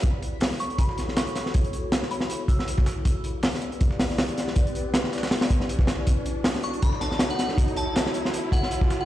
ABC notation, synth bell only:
X:1
M:4/4
L:1/16
Q:"Swing 16ths" 1/4=159
K:F#phr
V:1 name="Synth bell"
z6 c'2 b2 z2 c' c' z2 | z6 b2 z2 e' e' z4 | z16 | z16 |
z6 c'2 b2 a2 z f f z | z2 a2 z6 f2 z3 f |]